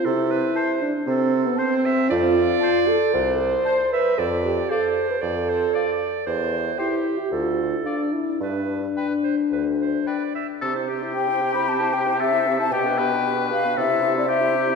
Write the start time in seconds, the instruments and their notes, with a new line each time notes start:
0.04 bassoon C3, french horn E4, clarinet A4
0.31 clarinet B4
0.55 clarinet C5, oboe C5, flute A5
0.82 french horn D4
1.07 bassoon C3, french horn C4, clarinet A4
1.46 french horn B3
1.56 french horn C4, clarinet C5, oboe C5, flute A5
1.85 clarinet E5
2.10 bassoon F2, french horn F4, clarinet D5
2.60 oboe C5, flute A5
2.88 french horn A4
3.14 bassoon C2, french horn C5
3.65 clarinet C5, oboe C5, flute A5
3.92 french horn B4, clarinet E5
4.18 bassoon F2, french horn A4, clarinet D5
4.45 french horn G4
4.70 french horn A4, clarinet C5, oboe D5, flute F5
5.10 french horn B4
5.22 bassoon F2, french horn A4, clarinet D5
5.49 clarinet C5
5.74 oboe D5, clarinet D5, flute F5
6.27 bassoon E2, clarinet C5
6.78 french horn E4, clarinet G4, oboe C5, flute G5
7.19 french horn G4
7.31 bassoon D2, french horn F4, clarinet A4
7.73 french horn E4
7.85 french horn D4, oboe D5, flute F5
8.13 french horn E4
8.40 bassoon G2, french horn D4, clarinet B4
8.96 clarinet B4, oboe B4, flute G5
9.24 clarinet C5
9.51 bassoon D2, clarinet B4
9.80 clarinet C5
10.07 oboe B4, clarinet D5, flute G5
10.35 clarinet E5
10.61 bassoon C3, french horn C4, clarinet G4, oboe A4
10.75 french horn E4, clarinet C5
10.89 french horn C4, clarinet G4, oboe G4
11.02 french horn E4, clarinet C5
11.15 french horn C4, clarinet G4, flute G5
11.29 french horn E4, clarinet C5
11.41 french horn C4, clarinet G4
11.54 french horn E4, clarinet C5, flute B5
11.68 french horn C4, clarinet G4, flute A5
11.80 french horn E4, clarinet C5
11.93 french horn C4, clarinet G4, flute G5
12.07 french horn E4, clarinet C5
12.19 french horn C4, clarinet G4, oboe A4, flute E5
12.33 french horn E4, clarinet C5
12.46 french horn C4, clarinet G4
12.60 french horn E4, clarinet C5, flute A5
12.71 bassoon B2, french horn B3, oboe G4, clarinet G4, flute G5
12.85 french horn D4, clarinet B4
12.98 french horn B3, clarinet G4, oboe B4
13.12 french horn D4, clarinet B4
13.26 french horn B3, clarinet G4
13.38 french horn D4, clarinet B4
13.51 french horn B3, clarinet G4, flute F5
13.64 french horn D4, clarinet B4
13.77 bassoon C3, french horn E4, clarinet G4, oboe A4, flute E5
13.90 french horn C4, clarinet E4
14.02 french horn E4, clarinet G4
14.16 french horn C4, clarinet E4, flute D5
14.28 french horn E4, oboe G4, clarinet G4, flute E5
14.41 french horn C4, clarinet E4
14.55 french horn E4, clarinet G4
14.68 french horn C4, clarinet E4